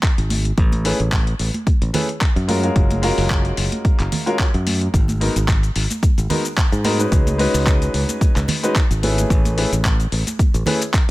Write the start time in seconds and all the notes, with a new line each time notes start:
0.03 kick, clap, closed hi-hat
0.18 G#1, closed hi-hat
0.30 open hi-hat, high conga
0.45 closed hi-hat
0.58 A1, kick, closed hi-hat
0.72 closed hi-hat, high conga
0.85 A3 C#4 E4 G#4 B4, open hi-hat
1.00 A1, closed hi-hat
1.12 kick, clap, closed hi-hat
1.27 closed hi-hat
1.39 A1, open hi-hat
1.54 closed hi-hat, high conga
1.67 muted fingered electric bass stroke, kick, closed hi-hat
1.82 A1, closed hi-hat
1.93 A3 C#4 E4 G#4 B4, open hi-hat, high conga, low conga
2.09 closed hi-hat
2.21 kick, clap, closed hi-hat
2.36 F#2, closed hi-hat
2.48 G#3 C#4 F4 F#4 A#4, open hi-hat, high conga
2.63 G#3 C#4 F4 F#4 A#4, closed hi-hat
2.76 F#1, kick, closed hi-hat
2.91 closed hi-hat, high conga
3.02 G#3 C#4 F4 F#4 A#4, open hi-hat
3.18 F#1, open hi-hat
3.30 kick, clap, closed hi-hat
3.45 closed hi-hat
3.57 F#1, open hi-hat
3.72 closed hi-hat, high conga
3.85 kick, closed hi-hat
4.00 F#1, clap, closed hi-hat
4.12 open hi-hat, high conga, low conga
4.26 G#3 C#4 F4 F#4 A#4, closed hi-hat
4.39 kick, clap, closed hi-hat
4.54 F#2, closed hi-hat
4.67 open hi-hat, high conga
4.82 closed hi-hat
4.94 G#1, kick, closed hi-hat, shaker
5.08 closed hi-hat, high conga, shaker
5.20 G#3 B3 D#4 F#4 A#4, open hi-hat
5.36 G#1, closed hi-hat, shaker
5.48 kick, clap, closed hi-hat, shaker
5.63 closed hi-hat, shaker
5.76 G#1, open hi-hat
5.90 closed hi-hat, high conga, shaker
6.03 muted fingered electric bass stroke, kick, closed hi-hat, shaker
6.18 G#1, closed hi-hat, shaker
6.30 G#3 B3 D#4 F#4 A#4, open hi-hat, high conga, low conga
6.45 closed hi-hat, shaker
6.57 kick, clap, closed hi-hat, shaker
6.72 G#2, closed hi-hat, shaker
6.84 G#3 B3 D#4 F#4 A#4, open hi-hat, high conga
6.99 G#3 C#4 D#4 F#4 B4, closed hi-hat, shaker
7.12 C#2, kick, closed hi-hat, shaker
7.27 closed hi-hat, high conga, shaker
7.38 G#3 C#4 D#4 F#4 B4, open hi-hat
7.54 C#2, open hi-hat, shaker
7.67 kick, clap, closed hi-hat, shaker
7.82 closed hi-hat, shaker
7.94 C#2, open hi-hat
8.09 closed hi-hat, high conga, shaker
8.21 kick, closed hi-hat, shaker
8.36 C#2, clap, closed hi-hat, shaker
8.48 open hi-hat, high conga, low conga
8.63 G#3 C#4 D#4 F#4 B4, closed hi-hat, shaker
8.76 kick, clap, closed hi-hat, shaker
8.91 G#1, closed hi-hat, shaker
9.03 A3 C#4 E4 G#4 B4, open hi-hat, high conga
9.18 closed hi-hat, shaker
9.30 A1, kick, closed hi-hat, shaker
9.45 closed hi-hat, high conga, shaker
9.57 A3 C#4 E4 G#4 B4, open hi-hat
9.72 A1, closed hi-hat, shaker
9.85 kick, clap, closed hi-hat, shaker
10.00 closed hi-hat, shaker
10.12 A1, open hi-hat
10.27 closed hi-hat, high conga, shaker
10.39 muted fingered electric bass stroke, kick, closed hi-hat, shaker
10.54 A1, closed hi-hat, shaker
10.66 A3 C#4 E4 G#4 B4, open hi-hat, high conga, low conga
10.82 closed hi-hat, shaker
10.94 kick, clap, closed hi-hat, shaker